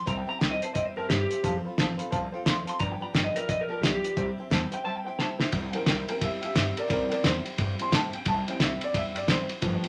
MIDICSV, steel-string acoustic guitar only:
0, 0, Header, 1, 2, 480
1, 0, Start_track
1, 0, Key_signature, 0, "major"
1, 0, Tempo, 341103
1, 106, Time_signature, 4, 2, 24, 8
1, 13905, End_track
2, 0, Start_track
2, 0, Title_t, "Steel-string acoustic guitar"
2, 0, Program_c, 0, 25
2, 79, Note_on_c, 0, 48, 77
2, 85, Note_on_c, 0, 55, 73
2, 85, Note_on_c, 0, 60, 69
2, 91, Note_on_c, 0, 64, 82
2, 99, Note_on_c, 0, 67, 84
2, 356, Note_off_c, 0, 67, 0
2, 373, Note_on_c, 0, 67, 57
2, 380, Note_off_c, 0, 64, 0
2, 389, Note_off_c, 0, 48, 0
2, 392, Note_off_c, 0, 55, 0
2, 392, Note_off_c, 0, 60, 0
2, 397, Note_on_c, 0, 64, 54
2, 414, Note_on_c, 0, 60, 44
2, 552, Note_off_c, 0, 60, 0
2, 565, Note_off_c, 0, 64, 0
2, 568, Note_on_c, 0, 48, 76
2, 569, Note_on_c, 0, 55, 72
2, 569, Note_on_c, 0, 60, 82
2, 570, Note_off_c, 0, 67, 0
2, 582, Note_on_c, 0, 64, 84
2, 589, Note_on_c, 0, 67, 88
2, 837, Note_off_c, 0, 67, 0
2, 854, Note_on_c, 0, 67, 50
2, 869, Note_off_c, 0, 64, 0
2, 873, Note_off_c, 0, 48, 0
2, 874, Note_off_c, 0, 55, 0
2, 874, Note_off_c, 0, 60, 0
2, 886, Note_on_c, 0, 64, 50
2, 899, Note_on_c, 0, 60, 45
2, 1045, Note_off_c, 0, 64, 0
2, 1045, Note_on_c, 0, 55, 57
2, 1047, Note_off_c, 0, 60, 0
2, 1050, Note_off_c, 0, 67, 0
2, 1062, Note_on_c, 0, 64, 58
2, 1063, Note_on_c, 0, 60, 58
2, 1081, Note_on_c, 0, 67, 61
2, 1335, Note_off_c, 0, 67, 0
2, 1351, Note_off_c, 0, 55, 0
2, 1352, Note_on_c, 0, 67, 62
2, 1356, Note_off_c, 0, 64, 0
2, 1360, Note_off_c, 0, 60, 0
2, 1372, Note_on_c, 0, 64, 57
2, 1381, Note_on_c, 0, 60, 49
2, 1535, Note_off_c, 0, 60, 0
2, 1539, Note_off_c, 0, 67, 0
2, 1545, Note_on_c, 0, 48, 70
2, 1548, Note_on_c, 0, 55, 72
2, 1549, Note_off_c, 0, 64, 0
2, 1552, Note_on_c, 0, 60, 82
2, 1562, Note_on_c, 0, 67, 77
2, 1565, Note_on_c, 0, 64, 80
2, 1834, Note_off_c, 0, 67, 0
2, 1841, Note_off_c, 0, 48, 0
2, 1843, Note_off_c, 0, 55, 0
2, 1844, Note_off_c, 0, 60, 0
2, 1851, Note_off_c, 0, 64, 0
2, 1851, Note_on_c, 0, 67, 50
2, 1867, Note_on_c, 0, 64, 43
2, 1886, Note_on_c, 0, 60, 42
2, 2028, Note_off_c, 0, 67, 0
2, 2030, Note_off_c, 0, 60, 0
2, 2032, Note_on_c, 0, 53, 84
2, 2036, Note_off_c, 0, 64, 0
2, 2046, Note_on_c, 0, 60, 81
2, 2050, Note_on_c, 0, 65, 82
2, 2059, Note_on_c, 0, 69, 78
2, 2323, Note_off_c, 0, 69, 0
2, 2324, Note_off_c, 0, 53, 0
2, 2332, Note_off_c, 0, 60, 0
2, 2333, Note_off_c, 0, 65, 0
2, 2340, Note_on_c, 0, 69, 57
2, 2366, Note_on_c, 0, 65, 48
2, 2381, Note_on_c, 0, 60, 43
2, 2502, Note_off_c, 0, 60, 0
2, 2509, Note_on_c, 0, 53, 88
2, 2513, Note_off_c, 0, 69, 0
2, 2517, Note_off_c, 0, 65, 0
2, 2519, Note_on_c, 0, 60, 94
2, 2534, Note_on_c, 0, 65, 92
2, 2541, Note_on_c, 0, 69, 93
2, 2797, Note_off_c, 0, 69, 0
2, 2803, Note_off_c, 0, 53, 0
2, 2808, Note_off_c, 0, 60, 0
2, 2814, Note_on_c, 0, 69, 59
2, 2815, Note_off_c, 0, 65, 0
2, 2832, Note_on_c, 0, 65, 54
2, 2842, Note_on_c, 0, 60, 56
2, 2990, Note_off_c, 0, 69, 0
2, 2992, Note_off_c, 0, 60, 0
2, 2998, Note_off_c, 0, 65, 0
2, 3000, Note_on_c, 0, 53, 54
2, 3009, Note_on_c, 0, 60, 64
2, 3014, Note_on_c, 0, 65, 67
2, 3025, Note_on_c, 0, 69, 64
2, 3271, Note_off_c, 0, 69, 0
2, 3288, Note_off_c, 0, 53, 0
2, 3288, Note_on_c, 0, 69, 64
2, 3291, Note_off_c, 0, 65, 0
2, 3292, Note_off_c, 0, 60, 0
2, 3308, Note_on_c, 0, 65, 64
2, 3331, Note_on_c, 0, 60, 52
2, 3463, Note_off_c, 0, 60, 0
2, 3464, Note_off_c, 0, 65, 0
2, 3466, Note_off_c, 0, 69, 0
2, 3469, Note_on_c, 0, 53, 77
2, 3480, Note_on_c, 0, 60, 79
2, 3481, Note_on_c, 0, 65, 81
2, 3493, Note_on_c, 0, 69, 72
2, 3746, Note_off_c, 0, 69, 0
2, 3762, Note_off_c, 0, 65, 0
2, 3762, Note_on_c, 0, 69, 48
2, 3763, Note_off_c, 0, 53, 0
2, 3768, Note_off_c, 0, 60, 0
2, 3779, Note_on_c, 0, 65, 46
2, 3787, Note_on_c, 0, 60, 42
2, 3935, Note_on_c, 0, 50, 81
2, 3938, Note_off_c, 0, 65, 0
2, 3940, Note_on_c, 0, 43, 75
2, 3941, Note_off_c, 0, 60, 0
2, 3943, Note_off_c, 0, 69, 0
2, 3945, Note_on_c, 0, 53, 78
2, 3947, Note_on_c, 0, 59, 75
2, 3955, Note_on_c, 0, 65, 90
2, 3962, Note_on_c, 0, 67, 90
2, 4216, Note_off_c, 0, 67, 0
2, 4224, Note_off_c, 0, 65, 0
2, 4233, Note_on_c, 0, 67, 53
2, 4236, Note_off_c, 0, 50, 0
2, 4238, Note_off_c, 0, 43, 0
2, 4241, Note_off_c, 0, 53, 0
2, 4241, Note_off_c, 0, 59, 0
2, 4241, Note_on_c, 0, 65, 54
2, 4262, Note_on_c, 0, 59, 47
2, 4263, Note_on_c, 0, 53, 47
2, 4412, Note_off_c, 0, 53, 0
2, 4416, Note_on_c, 0, 43, 87
2, 4419, Note_off_c, 0, 67, 0
2, 4423, Note_off_c, 0, 65, 0
2, 4425, Note_off_c, 0, 59, 0
2, 4427, Note_on_c, 0, 50, 83
2, 4429, Note_on_c, 0, 53, 76
2, 4437, Note_on_c, 0, 65, 84
2, 4442, Note_on_c, 0, 59, 82
2, 4447, Note_on_c, 0, 67, 90
2, 4700, Note_off_c, 0, 67, 0
2, 4712, Note_off_c, 0, 65, 0
2, 4716, Note_off_c, 0, 43, 0
2, 4717, Note_on_c, 0, 67, 55
2, 4719, Note_off_c, 0, 59, 0
2, 4722, Note_off_c, 0, 50, 0
2, 4722, Note_off_c, 0, 53, 0
2, 4729, Note_on_c, 0, 65, 51
2, 4736, Note_on_c, 0, 59, 53
2, 4743, Note_on_c, 0, 53, 42
2, 4875, Note_off_c, 0, 53, 0
2, 4889, Note_off_c, 0, 59, 0
2, 4891, Note_on_c, 0, 53, 58
2, 4901, Note_off_c, 0, 67, 0
2, 4902, Note_off_c, 0, 65, 0
2, 4906, Note_on_c, 0, 59, 54
2, 4919, Note_on_c, 0, 65, 62
2, 4928, Note_on_c, 0, 67, 62
2, 5169, Note_off_c, 0, 67, 0
2, 5186, Note_off_c, 0, 65, 0
2, 5186, Note_on_c, 0, 67, 63
2, 5194, Note_off_c, 0, 53, 0
2, 5194, Note_off_c, 0, 59, 0
2, 5203, Note_on_c, 0, 65, 59
2, 5211, Note_on_c, 0, 59, 50
2, 5222, Note_on_c, 0, 53, 50
2, 5375, Note_off_c, 0, 53, 0
2, 5375, Note_off_c, 0, 67, 0
2, 5378, Note_off_c, 0, 59, 0
2, 5378, Note_on_c, 0, 43, 68
2, 5384, Note_off_c, 0, 65, 0
2, 5388, Note_on_c, 0, 50, 74
2, 5392, Note_on_c, 0, 53, 79
2, 5395, Note_on_c, 0, 59, 70
2, 5399, Note_on_c, 0, 67, 81
2, 5401, Note_on_c, 0, 65, 77
2, 5650, Note_off_c, 0, 67, 0
2, 5665, Note_off_c, 0, 65, 0
2, 5667, Note_on_c, 0, 67, 54
2, 5675, Note_off_c, 0, 59, 0
2, 5677, Note_off_c, 0, 43, 0
2, 5682, Note_off_c, 0, 50, 0
2, 5682, Note_on_c, 0, 65, 45
2, 5684, Note_off_c, 0, 53, 0
2, 5692, Note_on_c, 0, 59, 43
2, 5702, Note_on_c, 0, 53, 44
2, 5853, Note_off_c, 0, 53, 0
2, 5856, Note_off_c, 0, 67, 0
2, 5856, Note_on_c, 0, 48, 77
2, 5859, Note_on_c, 0, 55, 83
2, 5864, Note_off_c, 0, 65, 0
2, 5866, Note_off_c, 0, 59, 0
2, 5871, Note_on_c, 0, 60, 81
2, 5876, Note_on_c, 0, 64, 82
2, 5882, Note_on_c, 0, 67, 81
2, 6147, Note_off_c, 0, 67, 0
2, 6156, Note_off_c, 0, 48, 0
2, 6158, Note_off_c, 0, 55, 0
2, 6164, Note_off_c, 0, 60, 0
2, 6164, Note_on_c, 0, 67, 53
2, 6166, Note_off_c, 0, 64, 0
2, 6182, Note_on_c, 0, 64, 49
2, 6194, Note_on_c, 0, 60, 51
2, 6332, Note_off_c, 0, 60, 0
2, 6335, Note_on_c, 0, 48, 78
2, 6342, Note_off_c, 0, 64, 0
2, 6345, Note_off_c, 0, 67, 0
2, 6348, Note_on_c, 0, 55, 95
2, 6349, Note_on_c, 0, 60, 79
2, 6359, Note_on_c, 0, 64, 94
2, 6364, Note_on_c, 0, 67, 95
2, 6615, Note_off_c, 0, 67, 0
2, 6632, Note_on_c, 0, 67, 59
2, 6636, Note_off_c, 0, 48, 0
2, 6637, Note_off_c, 0, 64, 0
2, 6643, Note_off_c, 0, 55, 0
2, 6643, Note_off_c, 0, 60, 0
2, 6654, Note_on_c, 0, 64, 53
2, 6664, Note_on_c, 0, 60, 46
2, 6815, Note_off_c, 0, 60, 0
2, 6819, Note_off_c, 0, 67, 0
2, 6823, Note_on_c, 0, 55, 56
2, 6830, Note_off_c, 0, 64, 0
2, 6831, Note_on_c, 0, 60, 53
2, 6846, Note_on_c, 0, 64, 58
2, 6846, Note_on_c, 0, 67, 61
2, 7113, Note_off_c, 0, 67, 0
2, 7120, Note_off_c, 0, 55, 0
2, 7124, Note_off_c, 0, 60, 0
2, 7127, Note_off_c, 0, 64, 0
2, 7129, Note_on_c, 0, 67, 55
2, 7144, Note_on_c, 0, 64, 59
2, 7153, Note_on_c, 0, 60, 53
2, 7308, Note_off_c, 0, 67, 0
2, 7310, Note_off_c, 0, 60, 0
2, 7314, Note_on_c, 0, 48, 69
2, 7315, Note_off_c, 0, 64, 0
2, 7326, Note_on_c, 0, 60, 69
2, 7327, Note_on_c, 0, 55, 71
2, 7338, Note_on_c, 0, 64, 83
2, 7339, Note_on_c, 0, 67, 86
2, 7570, Note_off_c, 0, 67, 0
2, 7586, Note_off_c, 0, 64, 0
2, 7587, Note_on_c, 0, 67, 46
2, 7603, Note_on_c, 0, 64, 41
2, 7604, Note_off_c, 0, 60, 0
2, 7605, Note_off_c, 0, 48, 0
2, 7612, Note_off_c, 0, 55, 0
2, 7621, Note_on_c, 0, 60, 40
2, 7758, Note_off_c, 0, 64, 0
2, 7758, Note_on_c, 0, 48, 79
2, 7762, Note_off_c, 0, 60, 0
2, 7768, Note_off_c, 0, 67, 0
2, 7768, Note_on_c, 0, 55, 76
2, 7775, Note_on_c, 0, 64, 82
2, 7779, Note_on_c, 0, 60, 85
2, 7785, Note_on_c, 0, 67, 82
2, 8065, Note_off_c, 0, 67, 0
2, 8068, Note_off_c, 0, 48, 0
2, 8073, Note_off_c, 0, 55, 0
2, 8076, Note_off_c, 0, 64, 0
2, 8078, Note_off_c, 0, 60, 0
2, 8082, Note_on_c, 0, 67, 59
2, 8094, Note_on_c, 0, 64, 52
2, 8113, Note_on_c, 0, 60, 44
2, 8264, Note_off_c, 0, 67, 0
2, 8270, Note_off_c, 0, 64, 0
2, 8274, Note_off_c, 0, 60, 0
2, 8276, Note_on_c, 0, 48, 84
2, 8277, Note_on_c, 0, 55, 90
2, 8291, Note_on_c, 0, 60, 84
2, 8294, Note_on_c, 0, 64, 85
2, 8299, Note_on_c, 0, 67, 99
2, 8551, Note_off_c, 0, 67, 0
2, 8567, Note_off_c, 0, 48, 0
2, 8567, Note_off_c, 0, 55, 0
2, 8568, Note_on_c, 0, 67, 59
2, 8572, Note_off_c, 0, 64, 0
2, 8574, Note_off_c, 0, 60, 0
2, 8589, Note_on_c, 0, 64, 55
2, 8601, Note_on_c, 0, 60, 45
2, 8747, Note_off_c, 0, 67, 0
2, 8748, Note_off_c, 0, 60, 0
2, 8748, Note_on_c, 0, 55, 56
2, 8754, Note_off_c, 0, 64, 0
2, 8764, Note_on_c, 0, 60, 62
2, 8771, Note_on_c, 0, 64, 65
2, 8779, Note_on_c, 0, 67, 69
2, 9005, Note_off_c, 0, 67, 0
2, 9022, Note_on_c, 0, 67, 64
2, 9024, Note_off_c, 0, 64, 0
2, 9035, Note_off_c, 0, 60, 0
2, 9041, Note_on_c, 0, 64, 50
2, 9043, Note_off_c, 0, 55, 0
2, 9051, Note_on_c, 0, 60, 48
2, 9198, Note_off_c, 0, 60, 0
2, 9201, Note_off_c, 0, 64, 0
2, 9214, Note_off_c, 0, 67, 0
2, 9214, Note_on_c, 0, 48, 76
2, 9215, Note_on_c, 0, 60, 78
2, 9218, Note_on_c, 0, 64, 70
2, 9222, Note_on_c, 0, 55, 74
2, 9234, Note_on_c, 0, 67, 76
2, 9491, Note_off_c, 0, 67, 0
2, 9507, Note_on_c, 0, 67, 46
2, 9512, Note_off_c, 0, 64, 0
2, 9516, Note_off_c, 0, 48, 0
2, 9517, Note_off_c, 0, 60, 0
2, 9520, Note_off_c, 0, 55, 0
2, 9529, Note_on_c, 0, 64, 46
2, 9545, Note_on_c, 0, 60, 38
2, 9666, Note_off_c, 0, 60, 0
2, 9675, Note_on_c, 0, 48, 88
2, 9678, Note_off_c, 0, 64, 0
2, 9680, Note_off_c, 0, 67, 0
2, 9683, Note_on_c, 0, 60, 80
2, 9685, Note_on_c, 0, 55, 84
2, 9695, Note_on_c, 0, 64, 84
2, 9697, Note_on_c, 0, 67, 76
2, 9958, Note_off_c, 0, 67, 0
2, 9971, Note_off_c, 0, 64, 0
2, 9975, Note_on_c, 0, 67, 60
2, 9986, Note_off_c, 0, 48, 0
2, 9988, Note_on_c, 0, 64, 61
2, 9991, Note_off_c, 0, 60, 0
2, 9992, Note_off_c, 0, 55, 0
2, 10008, Note_on_c, 0, 60, 50
2, 10169, Note_on_c, 0, 48, 82
2, 10171, Note_off_c, 0, 67, 0
2, 10174, Note_off_c, 0, 60, 0
2, 10177, Note_off_c, 0, 64, 0
2, 10189, Note_on_c, 0, 55, 82
2, 10191, Note_on_c, 0, 60, 77
2, 10194, Note_on_c, 0, 64, 79
2, 10198, Note_on_c, 0, 67, 86
2, 10459, Note_off_c, 0, 67, 0
2, 10474, Note_off_c, 0, 48, 0
2, 10476, Note_off_c, 0, 64, 0
2, 10476, Note_on_c, 0, 67, 54
2, 10484, Note_off_c, 0, 55, 0
2, 10485, Note_off_c, 0, 60, 0
2, 10493, Note_on_c, 0, 64, 49
2, 10500, Note_on_c, 0, 60, 48
2, 10642, Note_on_c, 0, 55, 59
2, 10643, Note_off_c, 0, 60, 0
2, 10657, Note_off_c, 0, 64, 0
2, 10660, Note_on_c, 0, 60, 61
2, 10661, Note_off_c, 0, 67, 0
2, 10673, Note_on_c, 0, 64, 65
2, 10684, Note_on_c, 0, 67, 62
2, 10925, Note_off_c, 0, 67, 0
2, 10930, Note_off_c, 0, 64, 0
2, 10941, Note_on_c, 0, 67, 56
2, 10945, Note_off_c, 0, 60, 0
2, 10947, Note_on_c, 0, 64, 53
2, 10951, Note_off_c, 0, 55, 0
2, 10962, Note_on_c, 0, 60, 52
2, 11120, Note_off_c, 0, 60, 0
2, 11121, Note_off_c, 0, 64, 0
2, 11127, Note_on_c, 0, 48, 72
2, 11131, Note_off_c, 0, 67, 0
2, 11137, Note_on_c, 0, 55, 71
2, 11137, Note_on_c, 0, 60, 75
2, 11138, Note_on_c, 0, 64, 79
2, 11148, Note_on_c, 0, 67, 80
2, 11397, Note_off_c, 0, 67, 0
2, 11414, Note_on_c, 0, 67, 48
2, 11415, Note_off_c, 0, 64, 0
2, 11432, Note_on_c, 0, 64, 47
2, 11433, Note_off_c, 0, 48, 0
2, 11438, Note_off_c, 0, 55, 0
2, 11438, Note_off_c, 0, 60, 0
2, 11454, Note_on_c, 0, 60, 41
2, 11603, Note_on_c, 0, 48, 87
2, 11605, Note_off_c, 0, 60, 0
2, 11608, Note_off_c, 0, 64, 0
2, 11611, Note_off_c, 0, 67, 0
2, 11618, Note_on_c, 0, 55, 90
2, 11622, Note_on_c, 0, 60, 87
2, 11625, Note_on_c, 0, 64, 94
2, 11631, Note_on_c, 0, 67, 84
2, 11896, Note_off_c, 0, 67, 0
2, 11911, Note_off_c, 0, 48, 0
2, 11913, Note_on_c, 0, 67, 57
2, 11915, Note_off_c, 0, 64, 0
2, 11919, Note_off_c, 0, 55, 0
2, 11921, Note_off_c, 0, 60, 0
2, 11932, Note_on_c, 0, 64, 55
2, 11950, Note_on_c, 0, 60, 47
2, 12094, Note_off_c, 0, 60, 0
2, 12094, Note_off_c, 0, 64, 0
2, 12095, Note_on_c, 0, 48, 83
2, 12097, Note_on_c, 0, 55, 83
2, 12101, Note_off_c, 0, 67, 0
2, 12111, Note_on_c, 0, 60, 85
2, 12111, Note_on_c, 0, 64, 87
2, 12116, Note_on_c, 0, 67, 88
2, 12362, Note_off_c, 0, 67, 0
2, 12379, Note_off_c, 0, 64, 0
2, 12379, Note_on_c, 0, 67, 56
2, 12396, Note_off_c, 0, 60, 0
2, 12396, Note_on_c, 0, 64, 57
2, 12398, Note_off_c, 0, 48, 0
2, 12399, Note_off_c, 0, 55, 0
2, 12413, Note_on_c, 0, 60, 54
2, 12568, Note_on_c, 0, 55, 57
2, 12571, Note_off_c, 0, 60, 0
2, 12573, Note_off_c, 0, 64, 0
2, 12574, Note_off_c, 0, 67, 0
2, 12588, Note_on_c, 0, 60, 60
2, 12590, Note_on_c, 0, 64, 70
2, 12607, Note_on_c, 0, 67, 56
2, 12850, Note_off_c, 0, 67, 0
2, 12866, Note_off_c, 0, 64, 0
2, 12867, Note_on_c, 0, 67, 69
2, 12875, Note_off_c, 0, 55, 0
2, 12877, Note_off_c, 0, 60, 0
2, 12882, Note_on_c, 0, 64, 55
2, 12894, Note_on_c, 0, 60, 46
2, 13042, Note_off_c, 0, 60, 0
2, 13049, Note_off_c, 0, 64, 0
2, 13050, Note_on_c, 0, 48, 67
2, 13054, Note_off_c, 0, 67, 0
2, 13059, Note_on_c, 0, 55, 77
2, 13059, Note_on_c, 0, 60, 82
2, 13066, Note_on_c, 0, 64, 79
2, 13341, Note_off_c, 0, 64, 0
2, 13348, Note_on_c, 0, 67, 47
2, 13356, Note_off_c, 0, 48, 0
2, 13358, Note_on_c, 0, 64, 49
2, 13360, Note_off_c, 0, 55, 0
2, 13361, Note_off_c, 0, 60, 0
2, 13381, Note_on_c, 0, 60, 42
2, 13516, Note_on_c, 0, 43, 77
2, 13526, Note_off_c, 0, 67, 0
2, 13527, Note_off_c, 0, 60, 0
2, 13528, Note_off_c, 0, 64, 0
2, 13529, Note_on_c, 0, 50, 88
2, 13532, Note_on_c, 0, 53, 89
2, 13533, Note_on_c, 0, 59, 97
2, 13533, Note_on_c, 0, 65, 89
2, 13543, Note_on_c, 0, 67, 95
2, 13792, Note_off_c, 0, 67, 0
2, 13806, Note_off_c, 0, 65, 0
2, 13809, Note_on_c, 0, 67, 63
2, 13820, Note_off_c, 0, 59, 0
2, 13823, Note_on_c, 0, 65, 57
2, 13830, Note_off_c, 0, 43, 0
2, 13830, Note_off_c, 0, 53, 0
2, 13836, Note_off_c, 0, 50, 0
2, 13837, Note_on_c, 0, 59, 57
2, 13847, Note_on_c, 0, 53, 52
2, 13905, Note_off_c, 0, 53, 0
2, 13905, Note_off_c, 0, 59, 0
2, 13905, Note_off_c, 0, 65, 0
2, 13905, Note_off_c, 0, 67, 0
2, 13905, End_track
0, 0, End_of_file